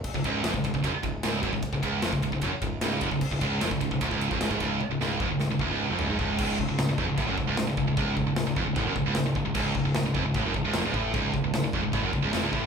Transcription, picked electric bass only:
X:1
M:4/4
L:1/16
Q:1/4=151
K:C#
V:1 name="Picked electric bass" clef=bass
z C,,, C,,,2 E,,, C,,, C,,, C,,, F,,, z C,,,2 C,,,2 F,,, C,,, | z C,,, C,,,2 E,,, C,,, C,,, C,,, F,,, z C,,,2 C,,,2 F,,, C,,, | z C,,, C,,,2 E,,, C,,, C,,, C,,, =D,,, C,,,2 E,,, C,,, G,,, C,,,2 | z C,,, C,,,2 E,,, C,,, C,,, C,,, =D,,, C,,,2 E,,, C,,, G,,, C,,,2 |
C,,,2 C,,, C,,, C,,, C,,, E,,, C,,, =A,,, F,,, C,,, C,,, C,,, C,,, C,,, C,,, | C,,,2 C,,, C,,, C,,, C,,, E,,, C,,, =A,,, F,,, C,,, C,,, C,,, C,,, C,,, C,,, | C,,,2 C,,, C,,, C,,, C,,, E,,, C,,, =A,,, F,,, C,,, C,,, E,,, C,,, A,,,2 | C,,,2 C,,, C,,, C,,, C,,, E,,, C,,, =A,,, F,,, C,,, C,,, E,,, C,,, A,,,2 |]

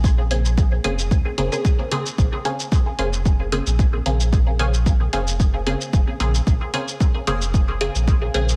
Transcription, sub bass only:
X:1
M:4/4
L:1/16
Q:"Swing 16ths" 1/4=112
K:Bbm
V:1 name="Sub bass" clef=bass
B,,,6 F,,,2 D,, z F,,, z4 z | B,,, z4 z F,,,4- F,,, B,,,3 B,,,2- | B,,,6 F,,,4- F,,, z F,,, z B,,, z | B,,, z4 z F,,,4- F,,, B,,,3 B,,,2 |]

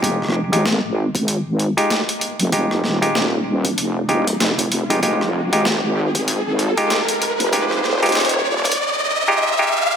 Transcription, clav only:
X:1
M:4/4
L:1/16
Q:"Swing 16ths" 1/4=96
K:Fm
V:1 name="Clav"
[A,EFG]2 z [A,EFG] z6 z [A,EFG]2 z3 | [A,EFG]3 [A,EFG]2 z4 z [A,EFG] z4 [A,EFG] | [A,EFG]2 z [A,EFG] z6 z [A,EFG]2 z3 | [A,EFG]3 [A,EFG]2 z6 [A,EFG]2 [A,EFG]3 |]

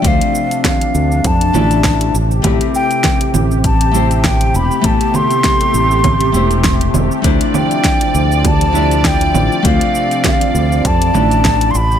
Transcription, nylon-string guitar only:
X:1
M:4/4
L:1/8
Q:"Swing 16ths" 1/4=100
K:Ddor
V:1 name="Nylon-string guitar"
[A,CDFc]4- [A,CDFc] [A,DEFd]2 z | [A,CEGB]4- [A,CEGB] [A,CEGc]3 | [A,B,CEG]4- [A,B,CEG] [A,CEGc]3 | [A,DEFc]4- [A,DEFc] [A,DEFd]3 |
[A,CDFc]4- [A,CDFc] [A,DEFd]2 z |]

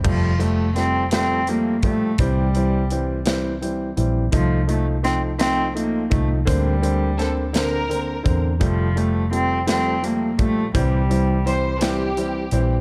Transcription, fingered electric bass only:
X:1
M:6/8
L:1/8
Q:3/8=56
K:F
V:1 name="Fingered electric bass" clef=bass
F,,,4- F,,, B,,, | C,,4- C,, B,,, | C,,4- C,, C,, | D,,4- D,, E,, |
F,,,4- F,,, B,,, | C,,4- C,, B,,, |]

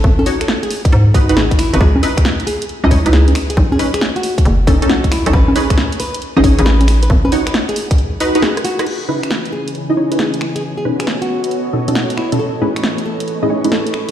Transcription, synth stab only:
X:1
M:4/4
L:1/16
Q:"Swing 16ths" 1/4=136
K:C#m
V:1 name="Synth stab"
z2 [DFc] z6 z [DFB] [DFB] z3 [DFB] | z2 [DEB] z6 [DEd] [DEc] [DEB]3 z2 | z2 [CDB] z6 z [CDA] [CDA] z3 [CDA] | z2 [CDGB] z6 [CDGd] [CDGc] [CDGB]4- [CDGB] |
z2 [DFc] z6 z [DFB] [DFB] z3 [DFB] | z2 [C,DEB] z6 [C,DEd] [C,DEc] [C,DEB]3 z2 | z2 [B,,CDB] z6 z [B,,CDA] [B,,CDA] z3 [B,,CDA] | z2 [A,,CDEGB] z6 [A,,CDEGd] [A,,CDEGc] [A,,CDEGB]4- [A,,CDEGB] |]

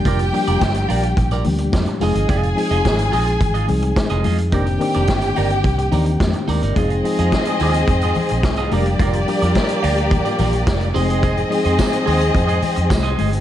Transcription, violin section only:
X:1
M:4/4
L:1/8
Q:1/4=107
K:Fdor
V:1 name="Violin section"
[Gg]6 z [Aa]- | [Aa]6- [Aa] z | [Gg]6- [Gg] z | [CAe]6- [CAe] [B,Gd]- |
[B,Gd]6- [B,Gd] [CAe]- | [CAe]8 |]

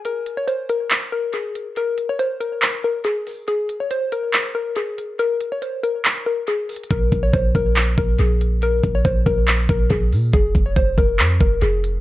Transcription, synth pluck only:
X:1
M:4/4
L:1/16
Q:1/4=140
K:Bbm
V:1 name="Synth pluck"
B3 d c2 B4 B2 A4 | B3 d c2 B4 B2 A4 | A3 d c2 B4 B2 A4 | B3 d c2 B4 B2 A4 |
B3 d c2 B4 B2 A4 | B3 d c2 B4 B2 A4 | A3 d c2 B4 B2 A4 |]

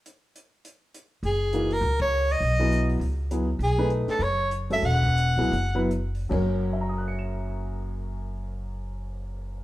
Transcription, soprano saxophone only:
X:1
M:4/4
L:1/8
Q:"Swing" 1/4=196
K:F#mix
V:1 name="Soprano saxophone"
z8 | G3 A2 c2 d- | d3 z4 z | G2 z =A c2 z e |
f6 z2 | z8 | z8 |]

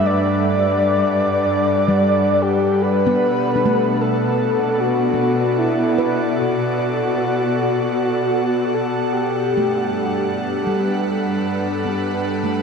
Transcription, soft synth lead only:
X:1
M:4/4
L:1/8
Q:1/4=76
K:Bphr
V:1 name="Soft synth lead"
d6 G B- | B2 A2 F2 E2 | F6 A G- | G2 z6 |]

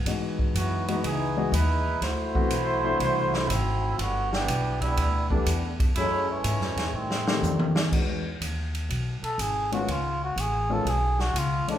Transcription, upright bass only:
X:1
M:4/4
L:1/8
Q:"Swing" 1/4=122
K:E
V:1 name="Upright bass" clef=bass
G,,2 F,,2 C,,2 D,,2 | =D,,2 B,,,2 =C,,2 G,,,2 | =G,,,2 B,,,2 =D,,2 E,,2 | F,,2 (3G,, F,, E,, A,,2 =F,,2 |
E,,2 D,,2 B,,, z G,,,2 | C,,2 A,,,2 B,,,2 C,, z |]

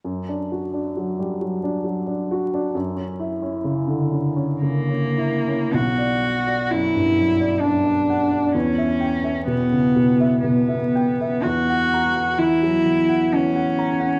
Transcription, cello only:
X:1
M:3/4
L:1/8
Q:1/4=65
K:Bm
V:1 name="Cello"
z6 | z4 ^A,2 | F2 E2 D2 | C2 B,2 B,2 |
F2 E2 C2 |]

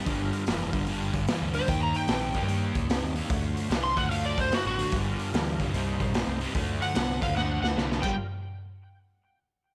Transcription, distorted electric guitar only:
X:1
M:4/4
L:1/8
Q:"Swing" 1/4=148
K:Gm
V:1 name="Distorted electric guitar" clef=bass
[G,,D,]2 [G,,=E,] [G,,D,] [G,,D,]2 [G,,E,] [G,,D,] | [E,B,]2 [E,C] [E,B,] [E,B,]2 [E,C] [E,B,] | [D,A,]2 [D,=B,] [D,A,] [D,A,]2 [D,B,] [D,A,] | [G,,D,]2 [G,,=E,] [G,,D,] [C,G,]2 [C,A,] [C,G,] |
[D,A,]2 [D,=B,] [D,A,] [D,A,]2 [D,B,] [G,,D,G,] | z8 |]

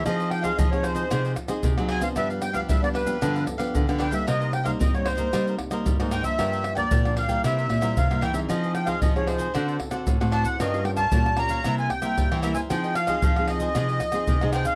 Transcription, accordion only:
X:1
M:4/4
L:1/16
Q:1/4=114
K:Fm
V:1 name="Accordion"
e2 g f e d c4 z4 a f | =e2 g f e =d =B4 z4 g e | e2 g f e d c4 z4 g =e- | =e3 =d3 f2 e4 f2 g e |
e2 g f e d c4 z4 =a ^f | e2 g =a3 b3 _a g4 =e a | g2 f4 e8 g f |]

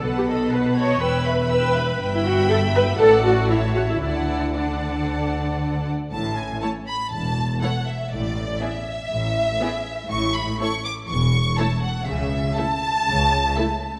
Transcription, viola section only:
X:1
M:4/4
L:1/16
Q:1/4=121
K:D
V:1 name="Viola section"
z G A2 B2 c2 B4 B4 | z E F2 A2 B2 A2 F2 E2 F E | E4 D8- D2 z2 | [K:A] z4 [A,E]4 z4 [A,E]4 |
z4 [B,E]4 z4 [B,E]4 | z4 [A,E]4 z4 [A,E]4 | z4 [A,E]4 z4 [A,E]4 |]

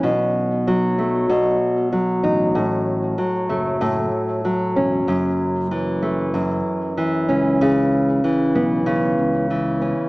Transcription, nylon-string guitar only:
X:1
M:4/4
L:1/8
Q:1/4=95
K:A
V:1 name="Nylon-string guitar" clef=bass
B,,2 F, A, B,,2 F, ^D | A,,2 F, A, A,,2 F, C | F,,2 E, A, F,,2 E, C | C,2 E, B, C,2 E, C |]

